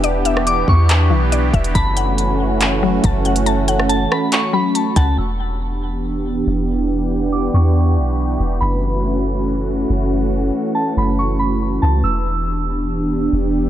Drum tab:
HH |x-x-x---x---x-xx|x-x-x---x---x-xx|x-x-x---x---x-x-|----------------|
CP |--------x-------|--------x-------|--------x-------|----------------|
SD |---r------------|----------------|---r--r---------|----------------|
BD |------o-------o-|o-----------o---|--------------o-|----------------|

HH |----------------|----------------|----------------|----------------|
CP |----------------|----------------|----------------|----------------|
SD |----------------|----------------|----------------|----------------|
BD |----------------|----------------|----------------|----------------|